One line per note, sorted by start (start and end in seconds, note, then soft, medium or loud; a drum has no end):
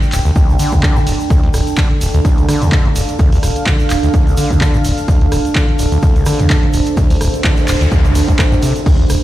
0.00 9.23 D4 medium
0.00 9.23 A4 medium
0.00 1.81 G5 medium
0.00 shaker soft
0.12 0.20 D1 medium
0.12 clap medium
0.12 open hi-hat loud
0.12 shaker medium
0.25 0.31 D2 loud
0.25 shaker soft
0.36 0.50 D2 medium
0.36 kick loud
0.36 shaker soft
0.49 0.58 C2 medium
0.49 shaker soft
0.59 0.74 D3 medium
0.59 open hi-hat loud
0.59 shaker medium
0.72 0.81 D2 medium
0.72 kick medium
0.72 shaker soft
0.83 0.98 D3 medium
0.83 kick loud
0.83 cross-stick medium
0.83 clap loud
0.83 shaker soft
0.96 1.00 D2 medium
0.96 shaker soft
1.07 1.14 D1 medium
1.07 open hi-hat loud
1.07 shaker medium
1.20 shaker soft
1.30 1.41 D2 medium
1.30 kick loud
1.30 closed hi-hat soft
1.30 shaker medium
1.43 1.49 D2 loud
1.43 closed hi-hat soft
1.54 1.61 D1 medium
1.54 cross-stick medium
1.54 open hi-hat medium
1.54 shaker medium
1.67 closed hi-hat soft
1.67 shaker soft
1.77 1.88 D3 medium
1.77 5.59 F5 medium
1.77 kick loud
1.77 clap loud
1.77 closed hi-hat soft
1.77 shaker medium
1.91 closed hi-hat soft
2.01 2.08 D1 medium
2.01 open hi-hat loud
2.01 shaker loud
2.14 2.20 D2 loud
2.14 closed hi-hat soft
2.14 shaker soft
2.25 2.40 D2 medium
2.25 kick loud
2.25 closed hi-hat soft
2.25 shaker medium
2.38 2.47 C2 medium
2.38 closed hi-hat soft
2.38 shaker soft
2.48 2.63 D3 medium
2.48 cross-stick medium
2.48 open hi-hat loud
2.48 shaker medium
2.62 2.70 D2 medium
2.62 closed hi-hat soft
2.62 shaker soft
2.72 2.87 D3 medium
2.72 kick loud
2.72 clap loud
2.72 closed hi-hat soft
2.72 shaker soft
2.85 2.89 D2 medium
2.85 closed hi-hat soft
2.96 3.03 D1 medium
2.96 open hi-hat loud
2.96 shaker loud
3.08 closed hi-hat soft
3.08 shaker soft
3.19 3.30 D2 medium
3.19 kick loud
3.19 closed hi-hat medium
3.19 shaker soft
3.32 3.38 D2 loud
3.32 open hi-hat medium
3.32 shaker soft
3.43 3.50 D1 medium
3.43 cross-stick medium
3.43 open hi-hat medium
3.43 shaker medium
3.56 closed hi-hat soft
3.56 shaker soft
3.67 3.77 D3 medium
3.67 kick loud
3.67 clap loud
3.67 closed hi-hat medium
3.67 shaker soft
3.79 closed hi-hat soft
3.79 shaker soft
3.90 3.97 D1 medium
3.90 clap medium
3.90 open hi-hat loud
3.90 shaker medium
4.03 4.09 D2 loud
4.03 closed hi-hat soft
4.03 shaker soft
4.14 4.28 D2 medium
4.14 kick loud
4.14 closed hi-hat soft
4.14 shaker soft
4.27 4.36 C2 medium
4.27 closed hi-hat soft
4.27 shaker soft
4.37 4.52 D3 medium
4.37 open hi-hat loud
4.37 shaker medium
4.50 4.59 D2 medium
4.50 kick medium
4.50 closed hi-hat soft
4.50 shaker soft
4.61 4.76 D3 medium
4.61 kick loud
4.61 cross-stick medium
4.61 clap loud
4.61 closed hi-hat medium
4.61 shaker soft
4.74 4.78 D2 medium
4.74 closed hi-hat soft
4.74 shaker soft
4.85 4.92 D1 medium
4.85 open hi-hat loud
4.85 shaker medium
4.98 closed hi-hat soft
4.98 shaker soft
5.08 5.19 D2 medium
5.08 kick loud
5.08 closed hi-hat medium
5.08 shaker soft
5.21 5.27 D2 loud
5.21 closed hi-hat soft
5.32 5.39 D1 medium
5.32 cross-stick medium
5.32 open hi-hat medium
5.32 shaker medium
5.45 closed hi-hat medium
5.45 shaker soft
5.55 5.66 D3 medium
5.55 9.23 C5 medium
5.55 kick loud
5.55 clap loud
5.55 closed hi-hat medium
5.55 shaker soft
5.69 closed hi-hat soft
5.79 5.86 D1 medium
5.79 open hi-hat loud
5.79 shaker medium
5.92 5.98 D2 loud
5.92 closed hi-hat medium
5.92 shaker soft
6.03 6.17 D2 medium
6.03 kick loud
6.03 closed hi-hat medium
6.03 shaker soft
6.16 6.25 C2 medium
6.16 closed hi-hat soft
6.16 shaker soft
6.26 6.41 D3 medium
6.26 cross-stick medium
6.26 open hi-hat medium
6.26 shaker medium
6.39 6.48 D2 medium
6.39 closed hi-hat medium
6.39 shaker soft
6.50 6.65 D3 medium
6.50 kick loud
6.50 clap loud
6.50 closed hi-hat medium
6.50 shaker medium
6.63 6.67 D2 medium
6.63 closed hi-hat soft
6.73 6.81 D1 medium
6.73 open hi-hat medium
6.73 shaker medium
6.86 closed hi-hat medium
6.86 shaker soft
6.97 7.08 D2 medium
6.97 kick loud
6.97 closed hi-hat medium
6.97 noise sweep medium
6.97 shaker soft
7.10 7.16 D2 loud
7.10 open hi-hat medium
7.10 shaker soft
7.21 7.28 D1 medium
7.21 cross-stick medium
7.21 open hi-hat medium
7.21 shaker medium
7.34 closed hi-hat medium
7.34 shaker soft
7.44 7.55 D3 medium
7.44 kick loud
7.44 clap loud
7.44 closed hi-hat medium
7.44 shaker medium
7.57 closed hi-hat soft
7.57 shaker soft
7.68 7.75 D1 medium
7.68 clap medium
7.68 open hi-hat loud
7.68 shaker medium
7.81 7.87 D2 loud
7.81 closed hi-hat medium
7.81 shaker soft
7.92 8.06 D2 medium
7.92 kick loud
7.92 closed hi-hat medium
7.92 shaker soft
8.05 8.14 C2 medium
8.05 closed hi-hat soft
8.05 shaker soft
8.15 8.23 D2 medium
8.15 open hi-hat loud
8.15 shaker medium
8.28 8.32 D2 medium
8.28 kick medium
8.28 closed hi-hat medium
8.28 shaker soft
8.39 8.43 D2 medium
8.39 kick loud
8.39 cross-stick medium
8.39 clap loud
8.39 closed hi-hat medium
8.39 shaker medium
8.52 8.56 G2 medium
8.52 closed hi-hat soft
8.52 shaker soft
8.62 8.73 C3 medium
8.62 open hi-hat loud
8.62 shaker medium
8.76 closed hi-hat soft
8.76 shaker soft
8.86 8.97 D2 medium
8.86 kick loud
8.86 closed hi-hat soft
8.86 crash medium
8.86 shaker soft
8.99 9.05 D2 loud
8.99 closed hi-hat soft
9.10 9.17 D1 medium
9.10 cross-stick medium
9.10 open hi-hat loud
9.10 shaker loud